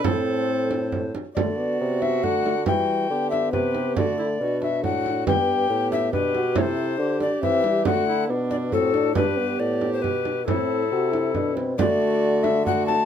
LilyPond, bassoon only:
\new Staff \with { instrumentName = "Bassoon" } { \clef bass \time 3/4 \key d \mixolydian \tempo 4 = 138 a,2~ a,8 r8 | d4 c4 d4 | e4 d4 c4 | d4 b,4 a,4 |
g,4 a,4 b,4 | c4 d4 e4 | d4 b,4 a,4 | g,4 a,4 b,4 |
a,4 c4 b,4 | d2. | }